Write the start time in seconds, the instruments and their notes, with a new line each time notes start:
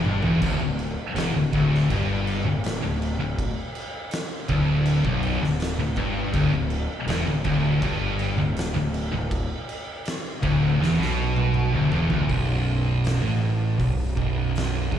0.04 picked electric bass G1, distorted electric guitar G2, high tom
0.22 picked electric bass E1, distorted electric guitar E2, floor tom
0.42 picked electric bass D1, distorted electric guitar D2, kick, splash, crash
0.60 picked electric bass D1, distorted electric guitar D2
0.79 crash
1.14 picked electric bass E1, distorted electric guitar E2, crash
1.18 snare
1.34 picked electric bass D1, distorted electric guitar D2
1.53 picked electric bass D1, distorted electric guitar D2, kick, crash
1.74 snare
1.90 picked electric bass G1, distorted electric guitar G2, kick, crash
2.27 crash
2.45 picked electric bass D1, distorted electric guitar D2
2.64 snare, crash
2.82 picked electric bass D1, distorted electric guitar D2
3.02 crash
3.19 picked electric bass D1, distorted electric guitar D2
3.39 kick, crash
3.75 crash
4.11 snare, crash
4.48 picked electric bass D1, distorted electric guitar D2, kick, crash
4.86 crash
5.05 picked electric bass B0, distorted electric guitar B1, kick
5.23 crash
5.40 picked electric bass D1, distorted electric guitar D2, snare
5.60 snare, crash
5.76 picked electric bass D1, distorted electric guitar D2
5.96 picked electric bass G1, distorted electric guitar G2, kick, crash
6.33 picked electric bass D1, distorted electric guitar D2, kick, crash
6.51 picked electric bass D1, distorted electric guitar D2
6.70 crash
7.06 picked electric bass E1, distorted electric guitar E2, snare, crash
7.25 picked electric bass D1, distorted electric guitar D2
7.44 picked electric bass D1, distorted electric guitar D2, kick, crash
7.82 picked electric bass G1, distorted electric guitar G2, kick, crash
8.19 crash
8.37 picked electric bass D1, distorted electric guitar D2
8.57 snare, crash
8.74 picked electric bass D1, distorted electric guitar D2
8.94 crash
9.12 picked electric bass D1, distorted electric guitar D2
9.31 kick, crash
9.69 crash
10.05 snare, crash
10.42 picked electric bass D1, distorted electric guitar D2, kick, crash
10.79 picked electric bass E1, distorted electric guitar E2, snare
10.98 picked electric bass B1, distorted electric guitar B2, snare
11.37 high tom
11.54 mid tom
11.73 picked electric bass D1, distorted electric guitar D2
11.91 picked electric bass E1, distorted electric guitar E2, floor tom
12.10 picked electric bass D1, distorted electric guitar D2, floor tom
12.29 picked electric bass B0, distorted electric guitar B1, kick, open hi-hat
13.04 snare, open hi-hat
13.22 picked electric bass A1, distorted electric guitar A2
13.78 picked electric bass B0, distorted electric guitar B1, kick, open hi-hat
14.16 picked electric bass B0, distorted electric guitar B1, kick
14.55 snare, open hi-hat
14.92 picked electric bass E1, distorted electric guitar E2, kick